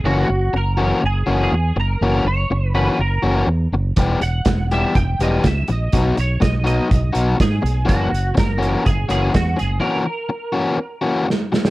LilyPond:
<<
  \new Staff \with { instrumentName = "Clean electric guitar" } { \time 4/4 \key fis \mixolydian \tempo 4 = 123 fis'4 ais'4 gis'8. gis'8. ais'8~ | ais'8 cis''4 b'8 ais'4 r4 | r8 fis''4 e''8 g''8 dis''8 e''8 dis''8~ | dis''8 cis''8 dis''8 dis''4 r8 gis'4 |
fis'4 ais'4 gis'8 gis'8 fis'8 gis'8 | ais'2. r4 | }
  \new Staff \with { instrumentName = "Overdriven electric guitar" } { \time 4/4 \key fis \mixolydian <e ais cis' fis'>8 r4 <e ais cis' fis'>8 r8 <e ais cis' fis'>8 r4 | <e ais cis' fis'>8 r4 <e ais cis' fis'>8 r8 <e ais cis' fis'>8 r4 | <e g b g'>8 r4 <e g b g'>8 r8 <e g b g'>8 r4 | <fis b dis' fis'>8 r4 <fis b dis' fis'>8 r8 <fis b dis' fis'>8 r4 |
<e ais cis' fis'>8 r4 <e ais cis' fis'>8 r8 <e ais cis' fis'>8 r4 | <e ais cis' fis'>8 r4 <e ais cis' fis'>8 r8 <e ais cis' fis'>8 r4 | }
  \new Staff \with { instrumentName = "Fingered electric bass" } { \clef bass \time 4/4 \key fis \mixolydian fis,,8 fis,,8 fis,,4 fis,,8 fis,,8 e,8 fis,,8 | fis,,8 fis,,8 fis,,4 fis,,8 fis,,8 e,8 fis,,8 | e,,8 e,,8 e,,4 e,,8 e,,8 cis,8 ais,,8 | b,,8 b,,8 b,,4 b,,8 b,,8 gis,8 b,,8 |
fis,,8 fis,,8 fis,,4 fis,,8 fis,,8 e,8 fis,,8 | r1 | }
  \new DrumStaff \with { instrumentName = "Drums" } \drummode { \time 4/4 r4 r4 r4 r4 | r4 r4 r4 r4 | <hh bd>8 hh8 <hh bd sn>8 hh8 <hh bd>8 hh8 <hh bd sn>8 hh8 | <hh bd>8 hh8 <hh bd sn>8 hh8 <hh bd>8 hh8 <hh bd sn>8 hh8 |
<hh bd>8 hh8 <hh bd sn>8 hh8 <hh bd>8 hh8 <hh bd sn>8 hh8 | r4 r4 r4 sn8 sn16 sn16 | }
>>